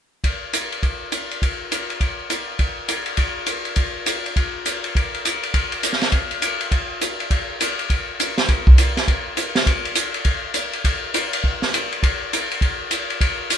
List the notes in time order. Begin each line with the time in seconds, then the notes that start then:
0.24 kick, ride
0.53 hi-hat pedal, ride
0.72 ride
0.83 kick, ride
1.12 hi-hat pedal, ride
1.31 ride
1.42 kick, ride
1.72 hi-hat pedal, ride
1.90 ride
2.00 kick, ride
2.30 hi-hat pedal, ride
2.59 kick, ride
2.88 hi-hat pedal, ride
3.06 ride
3.17 kick, ride
3.46 hi-hat pedal, ride
3.65 ride
3.76 kick, ride
4.06 hi-hat pedal, ride
4.26 ride
4.36 kick, ride
4.66 hi-hat pedal, ride
4.84 ride
4.95 kick, ride
5.14 ride
5.25 hi-hat pedal, ride
5.43 ride
5.54 kick, ride
5.72 ride
5.83 hi-hat pedal, ride
5.93 snare
6.01 snare, ride
6.12 kick, ride
6.31 ride
6.42 hi-hat pedal, ride
6.61 ride
6.71 kick, ride
7.01 hi-hat pedal, ride
7.20 ride
7.30 kick, ride
7.61 hi-hat pedal, ride
7.79 ride
7.90 kick, ride
8.20 hi-hat pedal, ride
8.38 snare, ride
8.49 kick, ride
8.67 kick
8.78 hi-hat pedal, ride
8.97 snare, ride
9.08 kick, ride
9.37 hi-hat pedal, ride
9.55 snare, ride
9.66 kick, ride
9.85 ride
9.95 hi-hat pedal, ride
10.14 ride
10.25 kick, ride
10.54 hi-hat pedal, ride
10.73 ride
10.84 kick, ride
11.14 hi-hat pedal, ride
11.33 ride
11.44 kick
11.62 snare
11.74 hi-hat pedal, ride
11.92 ride
12.03 kick, ride
12.33 hi-hat pedal, ride
12.51 ride
12.61 kick, ride
12.91 hi-hat pedal, ride
13.10 ride
13.21 kick, ride
13.50 hi-hat pedal, ride